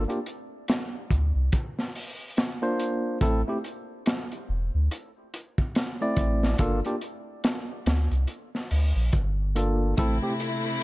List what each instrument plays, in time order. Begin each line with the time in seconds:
0.08 tine electric piano A#3 D4 F4 G4, closed hi-hat
0.26 closed hi-hat
0.68 snare, closed hi-hat
1.11 sub bass D2, kick, closed hi-hat
1.35 sub bass C2
1.52 kick, closed hi-hat
1.79 snare
1.95 open hi-hat
2.37 snare, closed hi-hat
2.62 tine electric piano A#3 D4 F4 C5
2.80 closed hi-hat
3.21 sub bass A1, tine electric piano A3 C4 E4 A4, kick, closed hi-hat
3.48 tine electric piano A3 C4 E4 G4
3.64 closed hi-hat
4.06 snare, closed hi-hat
4.32 closed hi-hat
4.49 sub bass E1
4.74 sub bass D2
4.91 closed hi-hat
5.34 closed hi-hat
5.58 kick
5.75 snare, closed hi-hat
6.01 tine electric piano A3 C4 E4 D5
6.16 sub bass A1, kick, closed hi-hat
6.43 snare
6.58 sub bass G1, tine electric piano A#3 D4 F4 A4, kick, closed hi-hat
6.85 tine electric piano A#3 D4 F4 G4, closed hi-hat
7.01 closed hi-hat
7.44 snare, closed hi-hat
7.86 sub bass D2, snare, closed hi-hat
8.11 sub bass C2, closed hi-hat
8.27 closed hi-hat
8.55 snare
8.71 sub bass D2, open hi-hat
8.95 sub bass A#1
9.13 sub bass G1, kick, closed hi-hat
9.55 tine electric piano A#3 D4 F4 A4, closed hi-hat
9.97 sub bass A1, string section C3 A3 E4, tine electric piano A3 C4 E4 A4, kick, closed hi-hat
10.22 tine electric piano A3 C4 E4 G4
10.40 closed hi-hat